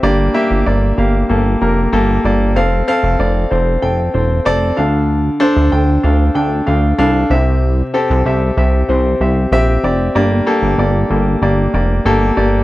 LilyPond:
<<
  \new Staff \with { instrumentName = "Grand piano" } { \time 4/4 \key g \dorian \tempo 4 = 95 <bes g' d''>8 <bes g' e''>8 <bes g' d''>8 <bes g' f''>8 <bes g' a'>8 <bes g' bes'>8 <bes g' a'>8 <bes g' d''>8 | <c' a' f''>8 <c' a' f''>8 <c' a' d''>8 <c' a' c''>8 <c' a' g''>8 <c' a' c''>8 <c' a' d''>8 <d' a' f''>8~ | <d' a' f''>8 <d' a' c''>8 <d' a' g''>8 <d' a' f''>8 <d' a' g''>8 <d' a' f''>8 <d' a' f''>8 <c' g' e''>8~ | <c' g' e''>8 <c' g' a'>8 <c' g' e''>8 <c' g' e''>8 <c' g' c''>8 <c' g' e''>8 <c' g' e''>8 <c' g' d''>8 |
<bes g' d''>8 <bes g' a'>8 <bes g' d''>8 <bes g' a'>8 <bes g' d''>8 <bes g' d''>8 <bes g' a'>8 <bes g' d''>8 | }
  \new Staff \with { instrumentName = "Grand piano" } { \clef bass \time 4/4 \key g \dorian g,4. r2 r8 | r2. r8 d8~ | d4 r2 r8 c8~ | c4 r2. |
g,4. r2 r8 | }
  \new Staff \with { instrumentName = "Analog synth bass" } { \clef bass \time 4/4 \key g \dorian g,,8 r16 g,,16 g,,8 g,,8 g,,8 f,,8 g,,8 g,,8 | f,,8 r16 f,,16 f,,8 f,,8 f,,8 e,,8 f,,8 d,8~ | d,8 r16 d,16 d,8 d,8 d,8 d,8 c,8 c,8~ | c,8 r16 c,16 c,8 c,8 c,8 c,8 bes,,8 f,,8 |
g,,8 r16 g,,16 g,,8 g,,8 g,,8 f,,8 g,,8 g,,8 | }
>>